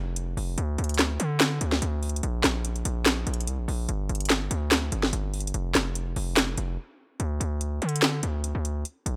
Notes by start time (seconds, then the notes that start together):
Already playing: F1
0.16 closed hi-hat
0.37 F1, open hi-hat
0.58 D2, closed hi-hat
0.78 D2, closed hi-hat
0.84 closed hi-hat
0.89 closed hi-hat
0.94 closed hi-hat
0.99 snare, clap, closed hi-hat
1.20 D3, closed hi-hat
1.40 snare, clap, closed hi-hat
1.61 D2, closed hi-hat
1.72 snare
1.82 D2, closed hi-hat
2.03 closed hi-hat, open hi-hat
2.09 closed hi-hat
2.16 closed hi-hat
2.23 A#1, closed hi-hat
2.44 A#1, snare, clap, closed hi-hat
2.65 closed hi-hat
2.76 closed hi-hat
2.85 A#1, closed hi-hat
3.06 snare, clap, closed hi-hat
3.27 A#1, closed hi-hat
3.34 closed hi-hat
3.40 closed hi-hat
3.47 C2, closed hi-hat
3.58 A#1
3.68 A#1, open hi-hat
3.89 G1, closed hi-hat
4.09 G1, closed hi-hat
4.15 closed hi-hat
4.20 closed hi-hat
4.25 closed hi-hat
4.30 snare, clap, closed hi-hat
4.51 D2, closed hi-hat
4.71 snare, clap, closed hi-hat
4.92 G1, closed hi-hat
5.03 snare
5.13 G1, closed hi-hat
5.34 closed hi-hat, open hi-hat
5.40 closed hi-hat
5.47 closed hi-hat
5.54 F1, closed hi-hat
5.75 F1, snare, clap, closed hi-hat
5.95 closed hi-hat
6.16 F1, open hi-hat
6.37 snare, clap, closed hi-hat
6.58 F1, closed hi-hat
7.20 D2, closed hi-hat
7.40 D2, closed hi-hat
7.61 closed hi-hat
7.82 D3, closed hi-hat
7.89 closed hi-hat
7.96 closed hi-hat
8.02 snare, clap, closed hi-hat
8.23 D2, closed hi-hat
8.44 closed hi-hat
8.55 D2
8.65 closed hi-hat
8.85 closed hi-hat
9.06 A#1, closed hi-hat